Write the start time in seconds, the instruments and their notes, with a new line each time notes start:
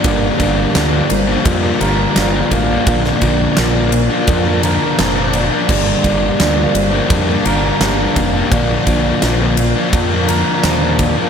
Already playing: clean electric guitar A#3 D4 A#4, string section D4 A#4 F5
0.03 fingered electric bass G1, distorted electric guitar G2 D3 G3 A#3 D4, clean electric guitar G2, string section G4, vibraphone D5, kick, ride
0.38 fingered electric bass G1, distorted electric guitar D3 G3 A#3 D4, clean electric guitar D3, kick, ride
0.73 fingered electric bass D2, distorted electric guitar G2 D3 G3 A#3 D4, clean electric guitar F3, vibraphone D5, snare, ride
0.92 distorted electric guitar G3 A#3 D4
1.10 fingered electric bass G1, clean electric guitar A#3, vibraphone C5, muted distorted electric guitar stroke, ride
1.27 distorted electric guitar G3 A#3 D4
1.45 fingered electric bass F2, clean electric guitar F4, vibraphone A#4, kick, ride
1.63 distorted electric guitar G3 A#3 D4
1.80 fingered electric bass G1, distorted electric guitar D3 G3 A#3 D4, clean electric guitar A#4, ride
2.16 fingered electric bass G1, distorted electric guitar G2 D3 G3 A#3 D4, clean electric guitar F4, vibraphone D5, snare, ride
2.33 distorted electric guitar G3 A#3 D4
2.51 fingered electric bass A1, clean electric guitar A#3, vibraphone F5, kick, ride
2.68 distorted electric guitar G3 A#3 D4
2.86 fingered electric bass A#1, distorted electric guitar A#2 D3 F3 A#3 D4, clean electric guitar A#2, string section F4 F5, vibraphone D5, kick, ride
3.04 snare
3.21 fingered electric bass A#1, distorted electric guitar D3 F3 A#3 D4, clean electric guitar D3, kick, ride
3.56 fingered electric bass A#1, distorted electric guitar A#2 D3 F3 A#3 D4, clean electric guitar F3, vibraphone A#4, snare, ride
3.74 distorted electric guitar F3 A#3 D4
3.92 clean electric guitar A#3, vibraphone D5, muted distorted electric guitar stroke, ride
4.09 distorted electric guitar F3 A#3 D4
4.27 fingered electric bass F2, clean electric guitar D4, vibraphone A#4, kick, ride
4.45 distorted electric guitar F3 A#3 D4
4.62 distorted electric guitar D3 F3 A#3 D4, clean electric guitar A#4, ride
4.97 fingered electric bass F1, distorted electric guitar A#2 D3 F3 A#3, clean electric guitar D4, vibraphone C5, snare, ride
5.02 distorted electric guitar D4
5.16 distorted electric guitar F3 A#3 D4
5.33 clean electric guitar A#3, vibraphone D5, ride
5.51 distorted electric guitar F3 A#3 D4
5.68 fingered electric bass G1, distorted electric guitar G2 D3 G3 A#3 D4, clean electric guitar G2, string section G4, vibraphone D5, kick, crash
6.03 fingered electric bass G1, distorted electric guitar D3 G3 A#3 D4, clean electric guitar D3, kick, ride
6.38 fingered electric bass D2, distorted electric guitar G2 D3 G3 A#3 D4, clean electric guitar F3, vibraphone D5, snare, ride
6.56 distorted electric guitar G3 A#3 D4
6.75 fingered electric bass G1, clean electric guitar A#3, vibraphone C5, muted distorted electric guitar stroke, ride
6.91 distorted electric guitar G3 A#3 D4
7.10 fingered electric bass F2, clean electric guitar D4, vibraphone A#4, kick, ride
7.27 distorted electric guitar G3 A#3 D4
7.44 fingered electric bass G1, distorted electric guitar D3 G3 A#3 D4, clean electric guitar A#4, ride
7.81 fingered electric bass G1, distorted electric guitar G2 D3 G3 A#3 D4, clean electric guitar D4, vibraphone D5, snare, ride
7.98 distorted electric guitar G3 A#3 D4
8.16 fingered electric bass F1, clean electric guitar A#3, vibraphone F5, kick, ride
8.34 distorted electric guitar G3 A#3 D4
8.51 fingered electric bass A#1, clean electric guitar A#2, distorted electric guitar A#2 D3 F3 A#3 D4, string section F4, vibraphone D5, kick, ride
8.87 fingered electric bass A#1, clean electric guitar D3, distorted electric guitar D3 F3 A#3 D4, kick, ride
9.22 fingered electric bass A#1, distorted electric guitar A#2 D3 F3 A#3 D4, clean electric guitar F3, vibraphone A#4, snare, ride
9.40 distorted electric guitar F3 A#3 D4
9.57 clean electric guitar A#3, vibraphone D5, muted distorted electric guitar stroke, ride
9.76 distorted electric guitar F3 A#3 D4
9.92 fingered electric bass F2, clean electric guitar D4, vibraphone A#4, kick, ride
10.11 distorted electric guitar F3 A#3 D4
10.28 distorted electric guitar D3 F3 A#3 D4, clean electric guitar A#4, ride
10.63 fingered electric bass D#2, distorted electric guitar A#2 D3 F3 A#3 D4, clean electric guitar D4, vibraphone C5, snare, ride
10.82 distorted electric guitar F3 A#3 D4
10.98 clean electric guitar A#3, vibraphone D5, kick, ride
11.17 distorted electric guitar F3 A#3 D4